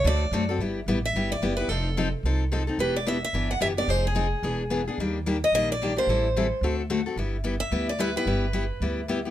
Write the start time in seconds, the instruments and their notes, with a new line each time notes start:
0.04 upright bass D2, steel-string acoustic guitar D3 A3 C4 F#4 A4 D5
0.31 upright bass F#2, steel-string acoustic guitar D3 A3 C4 F#4 A4
0.49 steel-string acoustic guitar C4 F#4 A4
0.58 upright bass G1, steel-string acoustic guitar G3 B3 E4
0.62 steel-string acoustic guitar G4
0.86 upright bass A1, steel-string acoustic guitar G3 B3 E4 G4
1.05 steel-string acoustic guitar E5
1.13 upright bass G1, steel-string acoustic guitar G3 B3 E4 G4
1.32 steel-string acoustic guitar D5
1.41 upright bass F#1, steel-string acoustic guitar G3 B3 E4 G4
1.57 steel-string acoustic guitar B3 E4 G4 B4
1.68 upright bass F1, steel-string acoustic guitar F3 C4 D#4 A4
1.97 steel-string acoustic guitar F3 C4 D#4 A4
2.23 upright bass C2, steel-string acoustic guitar F3 C4 D#4 A4
2.52 steel-string acoustic guitar F3 C4 D#4 A4
2.67 steel-string acoustic guitar C4 D#4 A4
2.78 upright bass E1, steel-string acoustic guitar E3 B3 D4 G4 B4
2.96 steel-string acoustic guitar D5
3.06 steel-string acoustic guitar E3 B3 D4 G4 E5
3.24 steel-string acoustic guitar E5
3.33 upright bass G1, steel-string acoustic guitar E3 B3 D4 G4
3.51 steel-string acoustic guitar F#5
3.60 upright bass F#1, steel-string acoustic guitar E3 B3 D4 G4 E5
3.77 steel-string acoustic guitar B3 D4 G4 D5
3.88 upright bass F1, steel-string acoustic guitar F3 C4 D#4 G#4 C5
4.07 steel-string acoustic guitar G#4
4.15 steel-string acoustic guitar F3 C4 D#4 G#4
4.43 upright bass E1, steel-string acoustic guitar E3 B3 D4 G#4
4.70 steel-string acoustic guitar E3 B3 D4 G#4
4.88 steel-string acoustic guitar B3 D4 G#4
4.98 upright bass D#2, steel-string acoustic guitar D#3 G3 A#3 D4 G4
5.26 steel-string acoustic guitar D#3 G3 A#3 D4 G4
5.44 steel-string acoustic guitar D#5
5.52 upright bass A#1, steel-string acoustic guitar D#3 G3 A#3 D4 G4 D#5
5.72 steel-string acoustic guitar D5
5.82 steel-string acoustic guitar D#3 G3 A#3 D4 G4
5.96 steel-string acoustic guitar A#3 D4 G4 C5
6.07 upright bass A1, steel-string acoustic guitar E3 G3 C4 E4 A4
6.36 steel-string acoustic guitar E3 G3 C4 E4 A4
6.61 upright bass D2, steel-string acoustic guitar D3 A3 C4 F#4 A4
6.90 steel-string acoustic guitar D3 A3 C4 F#4 A4
7.06 steel-string acoustic guitar C4 F#4 A4
7.16 upright bass G1, steel-string acoustic guitar G3 B3 E4 G4
7.44 steel-string acoustic guitar G3 B3 E4 G4
7.60 steel-string acoustic guitar E5
7.71 upright bass D2, steel-string acoustic guitar G3 B3 E4 G4
7.89 steel-string acoustic guitar D5
7.99 steel-string acoustic guitar G3 B3 E4 G4 B4
8.16 steel-string acoustic guitar B3 E4 G4 B4
8.26 upright bass G1, steel-string acoustic guitar G3 B3 E4 G4
8.53 steel-string acoustic guitar G3 B3 E4 G4
8.80 upright bass D2, steel-string acoustic guitar G3 B3 E4 G4
9.08 steel-string acoustic guitar G3 B3 E4 G4
9.25 steel-string acoustic guitar B3 E4 G4